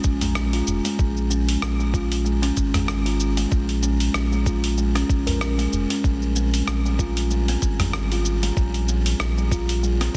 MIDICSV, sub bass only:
0, 0, Header, 1, 2, 480
1, 0, Start_track
1, 0, Tempo, 631579
1, 750, Time_signature, 4, 2, 24, 8
1, 7728, End_track
2, 0, Start_track
2, 0, Title_t, "Sub bass"
2, 0, Program_c, 0, 38
2, 32, Note_on_c, 0, 34, 83
2, 471, Note_off_c, 0, 34, 0
2, 512, Note_on_c, 0, 29, 82
2, 614, Note_off_c, 0, 29, 0
2, 753, Note_on_c, 0, 34, 97
2, 1192, Note_off_c, 0, 34, 0
2, 1232, Note_on_c, 0, 34, 81
2, 1911, Note_off_c, 0, 34, 0
2, 1953, Note_on_c, 0, 32, 106
2, 2631, Note_off_c, 0, 32, 0
2, 2674, Note_on_c, 0, 34, 104
2, 3112, Note_off_c, 0, 34, 0
2, 3150, Note_on_c, 0, 34, 85
2, 3830, Note_off_c, 0, 34, 0
2, 3873, Note_on_c, 0, 34, 86
2, 4312, Note_off_c, 0, 34, 0
2, 4352, Note_on_c, 0, 29, 84
2, 4454, Note_off_c, 0, 29, 0
2, 4592, Note_on_c, 0, 34, 98
2, 5031, Note_off_c, 0, 34, 0
2, 5073, Note_on_c, 0, 34, 88
2, 5752, Note_off_c, 0, 34, 0
2, 5793, Note_on_c, 0, 32, 96
2, 6472, Note_off_c, 0, 32, 0
2, 6512, Note_on_c, 0, 34, 105
2, 6951, Note_off_c, 0, 34, 0
2, 6992, Note_on_c, 0, 34, 90
2, 7671, Note_off_c, 0, 34, 0
2, 7728, End_track
0, 0, End_of_file